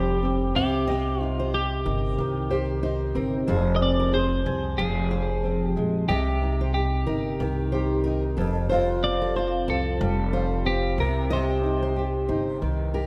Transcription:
Already playing: F1 F2 G3 C4 G4 C5
0.23 C4
0.55 C2 C3 G4
0.87 C3 G4 D#5
1.21 D#4 F4
1.40 C5
1.54 G4
1.86 G1 D#4 A#4
2.18 C2 D#3
2.50 G4 C5
2.83 D#4 C5
3.15 G1 C4 A#4
3.47 F1 F2 G#4 C5
3.76 D#5
3.81 C4 D5
4.00 A#4
4.13 G#4 C5
4.45 C2 C4 G#4
4.78 F1 F3 G#4
5.11 G#4 C5
5.44 C4
5.66 G4
5.76 A#1 G#3
6.08 C2 C3 G4 D#5
6.42 D#4
6.61 C5
6.74 G4
7.07 G1 D#4 A#4
7.40 C2 D#3
7.72 G4 C5
8.04 D#4 A#4
8.37 F1 F2 A4
8.69 F2 F4 C5
9.03 C4 D5
9.22 A4
9.36 F4 C5
9.68 C2 C4 A4
10.01 F1 G3
10.33 F4 C5
10.65 C4 G4
10.98 C2 C3 A#4
11.30 C3 G4 C5 D#5
11.63 D#4
11.82 C5
11.96 G4
12.29 G1 D#4 C5
12.61 C2 D#3
12.94 G4 A#4

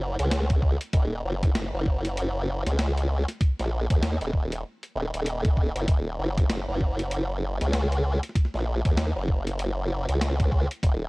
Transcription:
Already playing: F#1
0.19 C#2, closed hi-hat
0.31 snare, closed hi-hat
0.50 kick, closed hi-hat
0.62 kick
0.81 closed hi-hat
0.93 D#1, kick, closed hi-hat
1.24 F#1
1.43 kick, closed hi-hat
1.55 F#1, snare, closed hi-hat
1.74 F#1
1.86 kick
2.05 closed hi-hat
2.17 closed hi-hat
2.66 C#2, snare, closed hi-hat
2.79 snare, closed hi-hat
2.97 closed hi-hat
3.28 snare, closed hi-hat
3.41 kick, closed hi-hat
3.59 A#1, snare, closed hi-hat
3.90 D#2, kick, closed hi-hat
4.03 snare, closed hi-hat
4.21 D#1, closed hi-hat
4.33 D#1, kick
4.52 closed hi-hat
4.83 closed hi-hat
4.95 D#1
5.14 D#1, closed hi-hat
5.26 closed hi-hat
5.45 kick, closed hi-hat
5.57 kick
5.76 F#1, closed hi-hat
5.88 D#1, kick, closed hi-hat
6.19 F#1
6.38 kick, closed hi-hat
6.50 F#1, snare, closed hi-hat
6.69 F#1
6.81 kick
6.99 closed hi-hat
7.11 closed hi-hat
7.61 C#2, snare, closed hi-hat
7.73 snare, closed hi-hat
7.92 closed hi-hat
8.23 snare, closed hi-hat
8.29 snare
8.35 kick, snare, closed hi-hat
8.45 snare
8.54 A#1, snare
8.85 D#2, kick, closed hi-hat
8.97 snare, closed hi-hat
9.16 F#1
9.28 kick
9.47 closed hi-hat
9.59 closed hi-hat
10.09 C#2, closed hi-hat
10.21 snare, closed hi-hat
10.40 kick, closed hi-hat
10.52 kick
10.71 closed hi-hat
10.83 D#1, kick, closed hi-hat

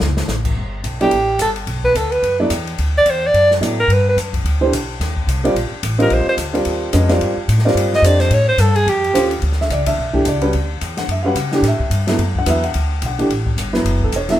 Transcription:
0.00 C#2, snare
0.17 snare
0.28 A1, snare, hi-hat pedal
0.45 kick, crash
0.57 G1
0.84 B1, hi-hat pedal, ride
1.00 F#3 B3 E4 G4 A4 D5, ride
1.11 A1, ride
1.39 G1 A4, hi-hat pedal, ride
1.56 ride
1.67 B1, ride
1.84 B4, kick
1.95 D2 A4, hi-hat pedal, ride
2.11 B4, ride
2.23 F#2, ride
2.39 F#3 B3 E4 A4 D5
2.50 E2, hi-hat pedal, ride
2.67 ride
2.78 D2, ride
2.98 D5
3.06 E2, hi-hat pedal, ride
3.10 C5
3.26 D5
3.34 F#2, ride
3.51 snare
3.61 A2 F#3 B3 E4 A4 D5, hi-hat pedal, ride
3.80 A#4
3.88 G2, ride
3.92 B4
4.09 B4
4.17 F#2, hi-hat pedal, ride
4.33 kick, ride
4.44 D2, ride
4.61 E3 A3 D4 G4 C5
4.71 B1, hi-hat pedal, ride
5.00 D#2, snare, ride
5.17 kick
5.27 C2, hi-hat pedal, ride
5.44 G3 C4 F4 A#4 D5, ride
5.55 A#1, ride
5.71 muted upright bass stroke
5.83 A1, hi-hat pedal, ride
5.98 G3 C4 F4 A#4 D#5, ride
6.10 A#1 C5, ride
6.27 C5, muted upright bass stroke
6.37 D2, hi-hat pedal, ride
6.53 G3 C4 F4 A#4 D5, ride
6.65 D#2, ride
6.93 F2 G#3 C#4 F#4 B4 D#5, hi-hat pedal, ride
7.09 G3 C4 F4 A#4 D5, snare, ride
7.21 ride
7.37 muted upright bass stroke
7.48 A2, hi-hat pedal, ride
7.59 snare
7.65 G3 C4 F4 A#4 D5, snare
7.75 G2, ride
7.93 D#5, snare
8.02 F2 A3 D4 G4 C5 D5 D#5, hi-hat pedal, ride
8.20 C5, snare, ride
8.30 A2 C#5, ride
8.48 C5
8.58 G2 A4, hi-hat pedal, ride
8.75 G#4, ride
8.86 F2 G4, ride
9.04 ride
9.13 D#2 A3 C#4 F4 G4 C5, hi-hat pedal, ride
9.31 ride
9.42 D2, ride
9.52 snare
9.61 E5, snare
9.70 C#2 D5, hi-hat pedal, ride
9.86 E5, kick, ride
9.98 B1
10.13 E3 A3 D4 G4, kick
10.25 C#2 D5, hi-hat pedal, ride
10.41 G3 C#4 F#4 B4, ride
10.53 D2, ride
10.81 E2, hi-hat pedal, ride
10.97 F#5, snare, ride
11.08 F#2 E5, ride
11.24 G3 C#4 F#4 B4 F#5
11.35 C#3, hi-hat pedal, ride
11.52 E3 A3 D4 G4, snare
11.62 A2, snare, ride
11.68 E5
11.80 muted upright bass stroke, kick
11.90 G2, hi-hat pedal, ride
12.07 F#3 B3 E4 A4, snare, ride
12.18 F#2, ride
12.35 F#5, kick
12.46 E2 F#3 B3 E4 B4 E5, hi-hat pedal, ride
12.64 F#5, ride
12.74 D2, ride
13.02 B1, hi-hat pedal, ride
13.06 F#5
13.19 E3 A3 D4 G4, ride
13.29 A1, ride
13.46 kick
13.57 G1, hi-hat pedal, ride
13.73 F#3 B3 E4 B4, snare
13.85 F#1, ride
14.01 A4, kick
14.12 E1 C#5, hi-hat pedal, ride
14.29 F#3 B3 E4 A4 E5, snare, ride

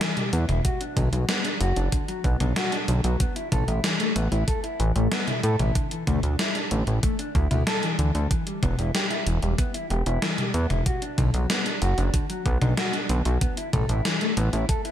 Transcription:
0.01 E3, snare, closed hi-hat
0.17 G3, closed hi-hat, mid tom
0.33 E2 B3, closed hi-hat
0.49 E1 E4, closed hi-hat, mid tom
0.65 F#4, kick, closed hi-hat
0.81 D4, closed hi-hat
0.97 B1 D3, kick, closed hi-hat, mid tom
1.13 B1 F#3, closed hi-hat
1.29 B3, snare, closed hi-hat
1.45 D4, closed hi-hat
1.61 F#1 F#4, closed hi-hat
1.76 F#1 D4, closed hi-hat
1.92 D3, kick, closed hi-hat
2.08 F#3, closed hi-hat
2.24 B1 B3, kick, closed hi-hat
2.40 B1 D4, closed hi-hat, mid tom
2.56 F#4, snare, closed hi-hat
2.72 D4, closed hi-hat
2.88 B1 D3, closed hi-hat
3.04 B1 F#3, closed hi-hat
3.20 B3, kick, closed hi-hat
3.36 E4, closed hi-hat
3.52 A1 A4, kick, closed hi-hat, mid tom
3.68 A1 E4, closed hi-hat
3.84 E3, snare, closed hi-hat
4.00 A3, closed hi-hat
4.16 A1 B3, closed hi-hat
4.32 A1 E4, closed hi-hat
4.48 A4, kick, closed hi-hat
4.64 E4, closed hi-hat
4.80 A1 E3, closed hi-hat
4.96 A1 A3, closed hi-hat
5.12 B3, snare, closed hi-hat
5.28 E4, closed hi-hat, mid tom
5.43 A2 A4, closed hi-hat
5.59 A1 E4, closed hi-hat, mid tom
5.75 D3, kick, closed hi-hat
5.91 E3, closed hi-hat
6.07 D2 A3, kick, closed hi-hat, mid tom
6.23 D2 D4, closed hi-hat
6.39 E4, snare, closed hi-hat
6.55 D4, closed hi-hat
6.71 A1 D3, closed hi-hat
6.87 A1 E3, closed hi-hat
7.03 A3, kick, closed hi-hat
7.19 D4, closed hi-hat
7.35 D2 E4, kick, closed hi-hat
7.51 D2 E4, closed hi-hat, mid tom
7.67 A4, snare, closed hi-hat
7.83 E3, closed hi-hat
7.99 D2 E3, closed hi-hat
8.15 D2 D3, closed hi-hat
8.31 E3, kick, closed hi-hat
8.47 G3, closed hi-hat
8.63 E1 B3, kick, closed hi-hat, mid tom
8.79 E1 E4, closed hi-hat
8.95 G4, snare, closed hi-hat
9.11 E4, closed hi-hat
9.27 E1 E3, closed hi-hat
9.42 E1 G3, closed hi-hat
9.58 B3, kick, closed hi-hat
9.74 E4, closed hi-hat
9.90 E1 G4, closed hi-hat
10.06 E1 E4, closed hi-hat
10.22 E3, snare, closed hi-hat
10.38 G3, closed hi-hat, mid tom
10.54 E2 B3, closed hi-hat
10.70 E1 E4, closed hi-hat, mid tom
10.86 F#4, kick, closed hi-hat
11.02 D4, closed hi-hat
11.18 B1 D3, kick, closed hi-hat, mid tom
11.34 B1 F#3, closed hi-hat
11.50 B3, snare, closed hi-hat
11.66 D4, closed hi-hat
11.82 F#1 F#4, closed hi-hat
11.98 F#1 D4, closed hi-hat
12.14 D3, kick, closed hi-hat
12.30 F#3, closed hi-hat
12.46 B1 B3, kick, closed hi-hat
12.62 B1 D4, closed hi-hat, mid tom
12.77 F#4, snare, closed hi-hat
12.93 D4, closed hi-hat
13.09 B1 D3, closed hi-hat
13.25 B1 F#3, closed hi-hat
13.41 B3, kick, closed hi-hat
13.57 E4, closed hi-hat
13.73 A1 A4, kick, closed hi-hat, mid tom
13.89 A1 E4, closed hi-hat
14.05 E3, snare, closed hi-hat
14.21 A3, closed hi-hat
14.37 A1 B3, closed hi-hat
14.53 A1 E4, closed hi-hat
14.69 A4, kick, closed hi-hat
14.85 E4, closed hi-hat

